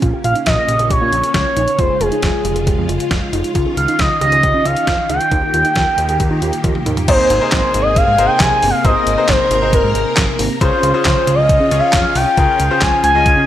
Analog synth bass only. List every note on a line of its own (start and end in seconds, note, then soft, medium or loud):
0.02 0.12 A#1 loud
0.24 0.34 A#1 loud
0.47 0.57 A#1 loud
0.68 0.78 A#1 medium
0.79 0.90 A#1 loud
0.90 1.00 A#1 loud
1.01 1.12 A#2 medium
1.12 1.23 A#1 loud
1.35 1.45 C#2 medium
1.57 1.67 A#1 medium
1.79 1.89 F1 loud
2.01 2.11 F1 loud
2.23 2.33 F1 loud
2.45 2.55 F1 loud
2.56 2.66 F1 loud
2.67 2.77 F1 loud
2.78 2.88 F2 medium
2.89 2.99 F1 loud
3.11 3.21 F1 loud
3.33 3.43 F1 loud
3.55 3.65 C#2 loud
3.77 3.87 C#2 loud
3.99 4.09 C#2 loud
4.21 4.31 C#2 medium
4.32 4.42 C#2 loud
4.43 4.53 C#2 loud
4.54 4.64 C#3 medium
4.65 4.75 C#2 loud
4.87 4.98 F2 medium
5.09 5.20 C#2 loud
5.32 5.42 D#2 loud
5.54 5.64 D#2 loud
5.76 5.86 D#2 loud
5.98 6.08 D#2 loud
6.09 6.19 D#2 medium
6.20 6.30 D#2 loud
6.31 6.41 D#3 loud
6.42 6.52 D#2 loud
6.64 6.74 D#2 loud
6.86 6.96 D#2 loud
7.08 7.18 G#1 loud
7.30 7.40 G#1 loud
7.52 7.62 G#1 loud
7.74 7.84 G#1 loud
7.85 7.95 G#1 medium
7.96 8.06 G#1 loud
8.08 8.18 G#2 loud
8.19 8.29 G#1 loud
8.40 8.51 C2 loud
8.63 8.73 G1 medium
8.85 8.95 G#1 loud
9.07 9.17 G#1 loud
9.29 9.39 G#1 loud
9.51 9.61 G#1 loud
9.62 9.72 G#1 loud
9.73 9.83 G#1 loud
9.84 9.94 G#2 loud
9.95 10.05 G#1 loud
10.17 10.27 G#1 loud
10.39 10.49 G#1 loud
10.61 10.71 C#2 loud
10.83 10.93 C#2 loud
11.05 11.15 C#2 loud
11.27 11.37 C#2 medium
11.38 11.48 C#2 loud
11.49 11.59 C#2 loud
11.60 11.70 C#3 loud
11.72 11.82 C#2 medium
11.93 12.04 F2 loud
12.16 12.26 C2 loud
12.38 12.48 C#2 loud
12.60 12.70 C#2 loud
12.82 12.92 C#2 loud
13.04 13.14 C#2 loud
13.15 13.25 C#2 loud
13.26 13.36 C#2 loud
13.37 13.46 C#3 medium